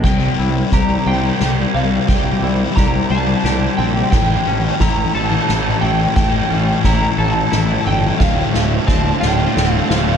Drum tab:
CC |x-----|------|x-----|------|
RD |-xxxxx|xxxxxx|-xxxxx|xxxxxx|
SD |o-o-o-|o-o-o-|o-o-o-|o-o-o-|
BD |o-o---|o-o---|o-o---|o-o---|

CC |x-----|
RD |-xxxxx|
SD |oooooo|
BD |o-o---|